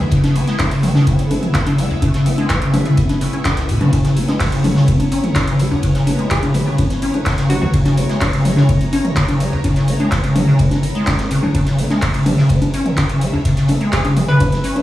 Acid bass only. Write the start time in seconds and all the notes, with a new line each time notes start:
0.12 C#3
0.24 C#3
0.36 C#4
0.48 G#3
0.59 E3
0.71 C#3
0.83 G#3
0.95 C#3
1.07 C#4
1.19 C#3
1.31 C#4
1.43 C#3
1.67 C#3
1.78 G#3
1.90 C#2
2.02 C#3
2.14 C#3
2.26 C#4
2.38 G#3
2.50 E3
2.62 C#3
2.74 G#3
2.86 C#3
2.98 C#4
3.09 C#3
3.21 C#3
3.33 C#4
3.45 E3
3.57 C#2
3.69 C#3
3.81 C#3
3.93 C#3
4.05 C#3
4.17 C#4
4.28 G#3
4.40 E3
4.52 C#3
4.64 G#3
4.76 C#3
4.88 C#4
5.00 C#3
5.12 C#4
5.24 C#3
5.47 C#3
5.59 G#3
5.71 C#2
5.83 C#3
5.95 C#3
6.07 C#4
6.19 G#3
6.31 E3
6.43 C#3
6.55 G#3
6.67 C#3
6.78 C#4
6.90 C#3
7.02 C#4
7.14 C#3
7.38 C#3
7.50 G#3
7.62 C#2
7.74 C#3
7.86 C#3
7.97 C#4
8.09 G#3
8.21 E3
8.33 C#3
8.45 G#3
8.57 C#3
8.69 C#4
8.81 C#3
8.93 C#4
9.05 C#3
9.28 C#3
9.40 G#3
9.52 C#2
9.64 C#3
9.76 C#3
9.88 C#4
10.00 G#3
10.12 E3
10.24 C#3
10.36 G#3
10.48 C#3
10.59 C#4
10.71 C#3
10.83 E3
10.95 G#3
11.19 C#4
11.31 C#3
11.43 C#3
11.55 C#3
11.67 C#3
11.78 C#4
11.90 G#3
12.02 E3
12.14 C#3
12.26 G#3
12.38 C#3
12.50 C#4
12.62 C#3
12.74 C#4
12.86 C#3
13.09 C#3
13.21 G#3
13.33 C#2
13.45 C#3
13.57 C#3
13.69 C#4
13.81 G#3
13.93 E3
14.05 C#3
14.17 G#3
14.29 C#3
14.40 C#4
14.52 C#3
14.64 C#4
14.76 C#3